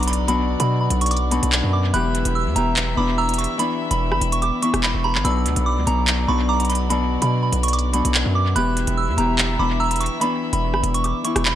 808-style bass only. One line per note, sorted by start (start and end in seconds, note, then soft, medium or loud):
0.00 0.56 B1 loud
0.60 0.89 B2 loud
0.90 1.41 B1 loud
1.43 1.63 B1 loud
1.63 1.93 F#2 loud
1.94 2.24 E1 loud
2.25 2.48 E1 loud
2.46 2.55 E2 loud
2.56 2.96 E1 loud
2.97 3.47 E1 loud
3.91 4.13 E1 loud
4.12 4.21 G1 loud
4.21 4.52 E1 loud
4.74 4.94 E1 loud
4.94 5.16 E1 loud
5.15 5.24 G1 loud
5.25 5.47 B1 loud
5.45 5.56 D2 loud
5.56 5.79 B1 loud
5.77 5.86 D2 loud
5.87 6.27 B1 loud
6.28 7.18 B1 loud
7.22 7.51 B2 loud
7.52 8.03 B1 loud
8.05 8.25 B1 loud
8.25 8.55 F#2 loud
8.56 8.86 E1 loud
8.87 9.10 E1 loud
9.08 9.17 E2 loud
9.18 9.58 E1 loud
9.59 10.10 E1 loud
10.53 10.75 E1 loud
10.74 10.83 G1 loud
10.83 11.14 E1 loud
11.36 11.55 E1 loud